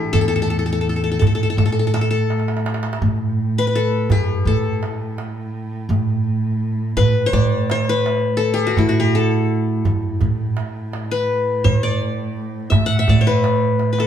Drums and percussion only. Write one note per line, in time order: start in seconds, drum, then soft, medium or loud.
0.14 darbuka dum medium
0.32 darbuka ka soft
1.22 darbuka dum medium
1.58 darbuka dum medium
1.76 darbuka ka soft
1.94 darbuka tek medium
2.30 darbuka tek medium
2.40 darbuka ka medium
2.48 darbuka tek medium
2.57 darbuka ka medium
2.66 darbuka tek medium
2.74 darbuka ka medium
2.83 darbuka tek medium
2.93 darbuka ka medium
3.02 darbuka dum medium
3.56 darbuka ka soft
4.10 darbuka dum medium
4.28 darbuka ka soft
4.46 darbuka dum medium
4.83 darbuka tek medium
5.18 darbuka tek medium
5.90 darbuka dum medium
6.44 darbuka ka soft
6.97 darbuka dum medium
7.16 darbuka ka soft
7.33 darbuka dum medium
7.70 darbuka tek medium
8.06 darbuka tek medium
8.77 darbuka dum medium
9.31 darbuka ka soft
9.85 darbuka dum medium
10.03 darbuka ka soft
10.20 darbuka dum medium
10.57 darbuka tek medium
10.93 darbuka tek medium
11.65 darbuka dum medium
12.01 darbuka ka soft
12.37 darbuka ka soft
12.72 darbuka dum loud
13.08 darbuka dum medium
13.26 darbuka ka soft
13.44 darbuka tek medium
13.79 darbuka tek soft
13.98 darbuka ka medium